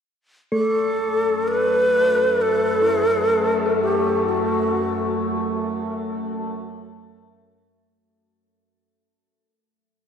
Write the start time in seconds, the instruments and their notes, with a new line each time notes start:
0.52 synth drone F#2 A3, singing bowl A3 A4, shakuhachi A4
1.48 shakuhachi B4
2.42 shakuhachi A4
2.82 synth bell E4
3.66 synth bell A4
3.83 shakuhachi G4
4.29 shakuhachi F#4